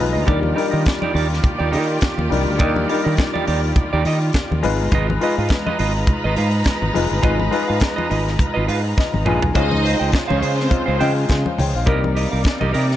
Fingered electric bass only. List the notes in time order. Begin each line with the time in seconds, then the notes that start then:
0.00 B1
0.16 D2
0.28 D#2
0.73 D#3
1.15 D#2
1.60 D#2
1.73 D#3
2.18 D#2
2.31 C2
2.48 D2
2.60 D#2
3.06 D#3
3.48 D#2
3.93 D#2
4.05 D#3
4.51 D#2
4.64 G#1
4.80 G1
4.92 G#1
5.38 G#2
5.80 G#1
6.25 G#1
6.38 G#2
6.82 G#1
6.95 F1
7.12 G1
7.24 G#1
7.70 G#2
8.11 G#1
8.57 G#1
8.69 G#2
9.14 G#1
9.26 A#1
9.43 B1
9.56 C#2
10.01 C#2
10.31 C#2
10.43 C#3
10.88 C#2
11.01 C#3
11.30 C#3
11.59 C#2
11.75 A#1
11.87 C2
12.33 C2
12.62 C2
12.75 C3